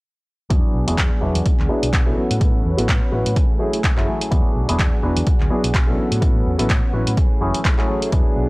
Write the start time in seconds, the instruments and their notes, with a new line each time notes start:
0.50 fingered electric bass E2, grand piano F#3 B3 D4 E4 G#4, clean electric guitar F#3 B3 D4 G#4, string machine D4 G#4 F#5, kick, closed hi-hat
0.74 fingered electric bass B1
0.87 fingered electric bass E1, grand piano F#3 B3 D4 E4 G#4, clean electric guitar B3 D4 G#4, closed hi-hat
0.97 clean electric guitar F#3 B3 D4, kick, clap, closed hi-hat
1.21 fingered electric bass E1, grand piano F#3 B3 D4 E4 B4, clean electric guitar F#3 B3 D4 G#4
1.35 fingered electric bass E2, closed hi-hat
1.46 kick, closed hi-hat
1.59 fingered electric bass D2, clap
1.69 grand piano F#3 B3 D4 E4 G#4, clean electric guitar F#3 B3 D4 G#4
1.83 fingered electric bass B1, closed hi-hat
1.93 clean electric guitar F#3 B3, kick, clap, closed hi-hat
2.06 grand piano F#3 B3 C#4 E4 A4
2.17 clean electric guitar E3 B3 C#4 F#4, string machine C#4 B4, muted fingered electric bass stroke
2.30 fingered electric bass A2, clean electric guitar B3 C#4 F#4, closed hi-hat
2.40 clean electric guitar E3 B3 C#4, grand piano F#3 B3 C#4 E4 A4, kick, closed hi-hat
2.65 fingered electric bass E2
2.77 fingered electric bass A1, grand piano F#3 B3 C#4 E4 A4, clean electric guitar B3 C#4 F#4, closed hi-hat
2.88 fingered electric bass A2, clean electric guitar E3 B3 C#4, kick, clap, closed hi-hat
3.12 fingered electric bass A1, clean electric guitar E3 B3 C#4 F#4, grand piano F#3 B3 C#4 E4 B4
3.26 fingered electric bass A2, closed hi-hat
3.36 clean electric guitar E3 A3 C#4 G#4, string machine A3 E4 G#5, kick, closed hi-hat
3.59 clean electric guitar E3 A3 C#4 G#4, grand piano F#3 A3 C#4 E4 G#4
3.73 closed hi-hat
3.83 clean electric guitar E3 A3 C#4, kick, clap, closed hi-hat
3.97 fingered electric bass F#1, grand piano F#3 A3 C#4 E4 G#4, clap
4.07 clean electric guitar E3 A3 C#4 G#4
4.21 clean electric guitar A3 C#4 G#4, closed hi-hat
4.31 fingered electric bass E2, grand piano F#3 B3 D4 E4 G#4, clean electric guitar F#3 B3 D4 G#4, string machine D4 G#4 F#5, kick, closed hi-hat
4.55 fingered electric bass B1
4.68 fingered electric bass E1, grand piano F#3 B3 D4 E4 G#4, clean electric guitar B3 D4 G#4, closed hi-hat
4.79 fingered electric bass E2, clean electric guitar F#3 B3 G#4, kick, clap, closed hi-hat
5.02 fingered electric bass E1, clean electric guitar F#3 B3 D4 G#4, grand piano F#3 B3 D4 E4 B4
5.16 fingered electric bass E2, closed hi-hat
5.27 kick, closed hi-hat
5.40 fingered electric bass D2, clap
5.50 grand piano F#3 B3 D4 E4 G#4, clean electric guitar F#3 B3 D4 G#4
5.64 fingered electric bass B1, closed hi-hat
5.74 clean electric guitar F#3 B3, kick, clap, closed hi-hat
5.87 grand piano F#3 B3 C#4 E4 A4
5.98 clean electric guitar E3 B3 C#4 F#4, string machine C#4 B4 F#5, muted fingered electric bass stroke
6.11 fingered electric bass A2, clean electric guitar B3 C#4 F#4, closed hi-hat
6.21 clean electric guitar E3 B3 C#4, grand piano F#3 B3 C#4 E4 A4, kick, closed hi-hat
6.46 fingered electric bass E2
6.58 fingered electric bass A1, grand piano F#3 B3 C#4 E4 A4, clean electric guitar B3 C#4 F#4, closed hi-hat
6.70 fingered electric bass A2, clean electric guitar C#4, kick, clap, closed hi-hat
6.93 fingered electric bass A1, clean electric guitar E3 B3 C#4 F#4, grand piano F#3 B3 C#4 E4 B4
7.07 fingered electric bass A2, closed hi-hat
7.16 clean electric guitar E3 A3 C#4 G#4, string machine A3 E4 G#5, kick, closed hi-hat
7.31 muted fingered electric bass stroke
7.41 fingered electric bass F#1, clean electric guitar E3 A3 C#4 G#4, grand piano F#3 A3 C#4 E4 G#4
7.54 closed hi-hat
7.65 clean electric guitar E3 A3 G#4, kick, clap, closed hi-hat
7.78 grand piano F#3 A3 C#4 E4 G#4, clap
7.88 clean electric guitar E3 A3 C#4 G#4
8.01 clean electric guitar A3 C#4 G#4, closed hi-hat
8.12 fingered electric bass E2, clean electric guitar F#3 B3 D4 G#4, grand piano F#3 B3 D4 E4 G#4, string machine D4 G#4 F#5, kick, closed hi-hat
8.36 fingered electric bass B1